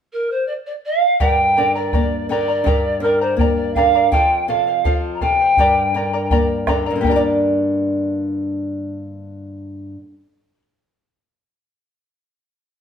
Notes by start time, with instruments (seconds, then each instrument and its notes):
0.13 pan flute A#4
0.31 pan flute C5
0.47 pan flute D5
0.66 pan flute D5
0.85 pan flute F5
1.20 nylon-string guitar G2, charango G4 A#4 D5 G5 A#5, pan flute G5, bombo low
1.57 nylon-string guitar D3, charango A#4 D5 G5 A#5
1.75 charango A#4 D5 A#5, pan flute D5
1.93 nylon-string guitar A#3, charango A#4 D5 G5 A#5, bombo low
2.29 nylon-string guitar D3, charango A#4 D5 G5 A#5, pan flute D5
2.48 charango A#4 D5 A#5
2.64 nylon-string guitar G2, charango G4 A#4 D5 G5 A#5, bombo low
3.00 nylon-string guitar D3, pan flute A#4, charango G5
3.04 charango A#4 D5 A#5
3.20 charango A#4 D5 A#5, pan flute C5
3.37 nylon-string guitar A#3, charango A#4 G5, pan flute D5, bombo low
3.41 charango D5 A#5
3.56 pan flute D5
3.74 nylon-string guitar D3, charango A#4 D5 G5, pan flute F5, bombo low
3.78 charango A#5
3.95 charango A#4 D5 A#5
4.10 nylon-string guitar F2, charango A4 C5 F5, pan flute G5, bombo low
4.48 nylon-string guitar C3, charango A4 C5 F5, pan flute F5
4.67 charango C5 F5
4.85 nylon-string guitar F3, charango A4 C5 F5, bombo low
5.14 pan flute A#5
5.21 nylon-string guitar C3, charango A4 C5 F5, pan flute G5, bombo low
5.40 charango C5 F5
5.57 nylon-string guitar G2, charango G4 A#4 D5 G5 A#5, bombo low
5.94 nylon-string guitar D3, charango A#4 D5 G5 A#5
6.13 charango A#4 D5 A#5
6.30 nylon-string guitar A#3, charango A#4 D5 G5 A#5, bombo low
6.67 nylon-string guitar D3, charango A#4 D5 G5 A#5, bombo rim, bombo low
6.86 charango A#4 D5 A#5
6.91 nylon-string guitar G2
6.96 nylon-string guitar D3
7.01 nylon-string guitar A#3, charango G4 G5, bombo low
7.06 nylon-string guitar D4, charango A#4 D5
7.11 nylon-string guitar G4, charango A#5
7.16 nylon-string guitar D5